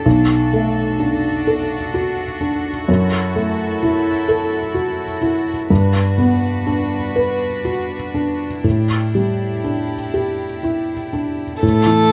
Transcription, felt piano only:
0, 0, Header, 1, 2, 480
1, 0, Start_track
1, 0, Tempo, 941915
1, 26, Time_signature, 6, 3, 24, 8
1, 2906, Tempo, 974026
1, 3866, Tempo, 991736
1, 6029, End_track
2, 0, Start_track
2, 0, Title_t, "Felt piano"
2, 0, Program_c, 0, 0
2, 0, Control_c, 0, 64, 127
2, 29, Note_on_c, 0, 35, 55
2, 35, Control_c, 0, 64, 0
2, 114, Control_c, 0, 64, 127
2, 272, Note_on_c, 0, 57, 42
2, 508, Note_on_c, 0, 62, 40
2, 654, Note_off_c, 0, 57, 0
2, 751, Note_on_c, 0, 69, 48
2, 892, Note_off_c, 0, 62, 0
2, 989, Note_on_c, 0, 66, 43
2, 1132, Note_off_c, 0, 69, 0
2, 1227, Note_on_c, 0, 62, 41
2, 1373, Note_off_c, 0, 66, 0
2, 1449, Note_off_c, 0, 35, 0
2, 1468, Note_off_c, 0, 62, 0
2, 1470, Note_on_c, 0, 42, 54
2, 1478, Control_c, 0, 64, 0
2, 1569, Control_c, 0, 64, 127
2, 1711, Note_on_c, 0, 57, 38
2, 1950, Note_on_c, 0, 64, 40
2, 2089, Note_off_c, 0, 57, 0
2, 2184, Note_on_c, 0, 69, 46
2, 2328, Note_off_c, 0, 64, 0
2, 2418, Note_on_c, 0, 66, 38
2, 2565, Note_off_c, 0, 69, 0
2, 2658, Note_on_c, 0, 64, 38
2, 2806, Note_off_c, 0, 66, 0
2, 2885, Note_off_c, 0, 42, 0
2, 2903, Note_off_c, 0, 64, 0
2, 2907, Note_on_c, 0, 43, 50
2, 2913, Control_c, 0, 64, 0
2, 3007, Control_c, 0, 64, 127
2, 3141, Note_on_c, 0, 59, 40
2, 3381, Note_on_c, 0, 62, 38
2, 3526, Note_off_c, 0, 59, 0
2, 3623, Note_on_c, 0, 71, 39
2, 3766, Note_off_c, 0, 62, 0
2, 3865, Note_on_c, 0, 66, 35
2, 4008, Note_off_c, 0, 71, 0
2, 4105, Note_on_c, 0, 62, 34
2, 4250, Note_off_c, 0, 66, 0
2, 4329, Note_off_c, 0, 43, 0
2, 4345, Note_on_c, 0, 45, 41
2, 4347, Note_off_c, 0, 62, 0
2, 4357, Control_c, 0, 64, 0
2, 4453, Control_c, 0, 64, 127
2, 4591, Note_on_c, 0, 55, 32
2, 4830, Note_on_c, 0, 62, 33
2, 4976, Note_off_c, 0, 55, 0
2, 5070, Note_on_c, 0, 67, 35
2, 5214, Note_off_c, 0, 62, 0
2, 5309, Note_on_c, 0, 64, 34
2, 5455, Note_off_c, 0, 67, 0
2, 5550, Note_on_c, 0, 62, 35
2, 5696, Note_off_c, 0, 64, 0
2, 5771, Note_off_c, 0, 45, 0
2, 5790, Note_off_c, 0, 62, 0
2, 5790, Note_on_c, 0, 45, 46
2, 5800, Control_c, 0, 64, 0
2, 5875, Control_c, 0, 64, 127
2, 5905, Note_on_c, 0, 52, 34
2, 6029, Note_off_c, 0, 45, 0
2, 6029, Note_off_c, 0, 52, 0
2, 6029, End_track
0, 0, End_of_file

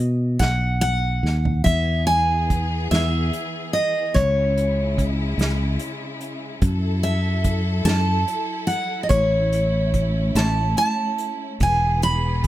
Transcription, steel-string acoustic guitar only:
0, 0, Header, 1, 2, 480
1, 0, Start_track
1, 0, Key_signature, 4, "major"
1, 0, Tempo, 837989
1, 951, Time_signature, 6, 3, 24, 8
1, 1910, Tempo, 823045
1, 4790, Tempo, 833333
1, 7208, End_track
2, 0, Start_track
2, 0, Title_t, "Steel-string acoustic guitar"
2, 0, Program_c, 0, 25
2, 0, Note_on_c, 0, 75, 78
2, 226, Note_on_c, 0, 78, 94
2, 449, Note_off_c, 0, 75, 0
2, 459, Note_off_c, 0, 78, 0
2, 466, Note_on_c, 0, 78, 103
2, 927, Note_off_c, 0, 78, 0
2, 939, Note_on_c, 0, 76, 96
2, 1182, Note_off_c, 0, 76, 0
2, 1184, Note_on_c, 0, 80, 98
2, 1665, Note_off_c, 0, 80, 0
2, 1667, Note_on_c, 0, 76, 90
2, 2125, Note_off_c, 0, 76, 0
2, 2142, Note_on_c, 0, 75, 87
2, 2382, Note_on_c, 0, 73, 78
2, 2394, Note_off_c, 0, 75, 0
2, 2902, Note_off_c, 0, 73, 0
2, 4067, Note_on_c, 0, 76, 84
2, 4542, Note_off_c, 0, 76, 0
2, 4544, Note_on_c, 0, 81, 112
2, 5003, Note_off_c, 0, 81, 0
2, 5018, Note_on_c, 0, 78, 99
2, 5209, Note_off_c, 0, 78, 0
2, 5228, Note_on_c, 0, 75, 61
2, 5259, Note_off_c, 0, 75, 0
2, 5262, Note_on_c, 0, 73, 86
2, 5994, Note_on_c, 0, 81, 97
2, 6008, Note_off_c, 0, 73, 0
2, 6227, Note_off_c, 0, 81, 0
2, 6234, Note_on_c, 0, 81, 99
2, 6720, Note_off_c, 0, 81, 0
2, 6722, Note_on_c, 0, 80, 92
2, 6953, Note_off_c, 0, 80, 0
2, 6955, Note_on_c, 0, 83, 94
2, 7208, Note_off_c, 0, 83, 0
2, 7208, End_track
0, 0, End_of_file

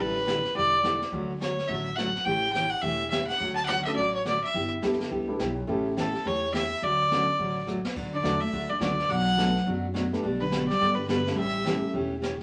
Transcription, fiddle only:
0, 0, Header, 1, 2, 480
1, 0, Start_track
1, 0, Key_signature, 2, "major"
1, 0, Tempo, 284630
1, 1901, Time_signature, 4, 2, 24, 8
1, 20960, End_track
2, 0, Start_track
2, 0, Title_t, "Fiddle"
2, 0, Program_c, 0, 110
2, 2, Note_on_c, 0, 71, 105
2, 944, Note_off_c, 0, 71, 0
2, 954, Note_on_c, 0, 74, 102
2, 1666, Note_off_c, 0, 74, 0
2, 2381, Note_on_c, 0, 73, 81
2, 2833, Note_on_c, 0, 76, 91
2, 2858, Note_off_c, 0, 73, 0
2, 3295, Note_on_c, 0, 78, 90
2, 3320, Note_off_c, 0, 76, 0
2, 3791, Note_on_c, 0, 79, 107
2, 3816, Note_off_c, 0, 78, 0
2, 4239, Note_off_c, 0, 79, 0
2, 4249, Note_on_c, 0, 79, 94
2, 4550, Note_on_c, 0, 78, 88
2, 4575, Note_off_c, 0, 79, 0
2, 4749, Note_on_c, 0, 76, 98
2, 4774, Note_off_c, 0, 78, 0
2, 5216, Note_off_c, 0, 76, 0
2, 5226, Note_on_c, 0, 76, 85
2, 5495, Note_off_c, 0, 76, 0
2, 5505, Note_on_c, 0, 78, 99
2, 5974, Note_off_c, 0, 78, 0
2, 5992, Note_on_c, 0, 81, 100
2, 6151, Note_off_c, 0, 81, 0
2, 6161, Note_on_c, 0, 78, 100
2, 6461, Note_off_c, 0, 78, 0
2, 6483, Note_on_c, 0, 76, 90
2, 6656, Note_off_c, 0, 76, 0
2, 6667, Note_on_c, 0, 74, 95
2, 6955, Note_off_c, 0, 74, 0
2, 6989, Note_on_c, 0, 73, 82
2, 7165, Note_off_c, 0, 73, 0
2, 7196, Note_on_c, 0, 74, 85
2, 7461, Note_off_c, 0, 74, 0
2, 7477, Note_on_c, 0, 76, 91
2, 7922, Note_off_c, 0, 76, 0
2, 10098, Note_on_c, 0, 69, 91
2, 10571, Note_on_c, 0, 73, 104
2, 10596, Note_off_c, 0, 69, 0
2, 11015, Note_off_c, 0, 73, 0
2, 11025, Note_on_c, 0, 76, 104
2, 11529, Note_on_c, 0, 74, 111
2, 11554, Note_off_c, 0, 76, 0
2, 12953, Note_off_c, 0, 74, 0
2, 13717, Note_on_c, 0, 74, 83
2, 14169, Note_on_c, 0, 76, 90
2, 14194, Note_off_c, 0, 74, 0
2, 14664, Note_on_c, 0, 74, 86
2, 14690, Note_off_c, 0, 76, 0
2, 14837, Note_off_c, 0, 74, 0
2, 14847, Note_on_c, 0, 74, 90
2, 15345, Note_on_c, 0, 78, 111
2, 15370, Note_off_c, 0, 74, 0
2, 16301, Note_off_c, 0, 78, 0
2, 17542, Note_on_c, 0, 71, 82
2, 17992, Note_off_c, 0, 71, 0
2, 18004, Note_on_c, 0, 74, 98
2, 18464, Note_on_c, 0, 71, 82
2, 18489, Note_off_c, 0, 74, 0
2, 18665, Note_off_c, 0, 71, 0
2, 18675, Note_on_c, 0, 71, 85
2, 19132, Note_off_c, 0, 71, 0
2, 19179, Note_on_c, 0, 76, 108
2, 20071, Note_off_c, 0, 76, 0
2, 20960, End_track
0, 0, End_of_file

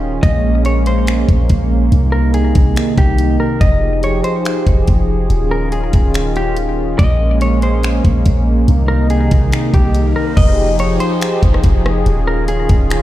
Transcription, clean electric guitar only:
0, 0, Header, 1, 2, 480
1, 0, Start_track
1, 0, Key_signature, -4, "minor"
1, 0, Tempo, 422535
1, 261, Time_signature, 4, 2, 24, 8
1, 14791, End_track
2, 0, Start_track
2, 0, Title_t, "Clean electric guitar"
2, 0, Program_c, 0, 27
2, 260, Note_on_c, 0, 75, 95
2, 712, Note_off_c, 0, 75, 0
2, 747, Note_on_c, 0, 73, 89
2, 972, Note_off_c, 0, 73, 0
2, 988, Note_on_c, 0, 72, 79
2, 2139, Note_off_c, 0, 72, 0
2, 2410, Note_on_c, 0, 70, 83
2, 2643, Note_off_c, 0, 70, 0
2, 2661, Note_on_c, 0, 68, 89
2, 3338, Note_off_c, 0, 68, 0
2, 3387, Note_on_c, 0, 67, 74
2, 3835, Note_off_c, 0, 67, 0
2, 3861, Note_on_c, 0, 70, 75
2, 4089, Note_off_c, 0, 70, 0
2, 4099, Note_on_c, 0, 75, 99
2, 4551, Note_off_c, 0, 75, 0
2, 4587, Note_on_c, 0, 73, 79
2, 4813, Note_off_c, 0, 73, 0
2, 4819, Note_on_c, 0, 72, 80
2, 5975, Note_off_c, 0, 72, 0
2, 6263, Note_on_c, 0, 70, 76
2, 6490, Note_off_c, 0, 70, 0
2, 6500, Note_on_c, 0, 68, 82
2, 7177, Note_off_c, 0, 68, 0
2, 7232, Note_on_c, 0, 67, 87
2, 7455, Note_off_c, 0, 67, 0
2, 7939, Note_on_c, 0, 75, 98
2, 8391, Note_off_c, 0, 75, 0
2, 8427, Note_on_c, 0, 73, 89
2, 8652, Note_off_c, 0, 73, 0
2, 8667, Note_on_c, 0, 72, 81
2, 9819, Note_off_c, 0, 72, 0
2, 10090, Note_on_c, 0, 70, 88
2, 10324, Note_off_c, 0, 70, 0
2, 10342, Note_on_c, 0, 68, 87
2, 11018, Note_off_c, 0, 68, 0
2, 11067, Note_on_c, 0, 67, 74
2, 11515, Note_off_c, 0, 67, 0
2, 11541, Note_on_c, 0, 70, 77
2, 11769, Note_off_c, 0, 70, 0
2, 11778, Note_on_c, 0, 75, 102
2, 12231, Note_off_c, 0, 75, 0
2, 12266, Note_on_c, 0, 73, 83
2, 12492, Note_off_c, 0, 73, 0
2, 12499, Note_on_c, 0, 72, 87
2, 13654, Note_off_c, 0, 72, 0
2, 13944, Note_on_c, 0, 70, 79
2, 14171, Note_off_c, 0, 70, 0
2, 14181, Note_on_c, 0, 68, 91
2, 14791, Note_off_c, 0, 68, 0
2, 14791, End_track
0, 0, End_of_file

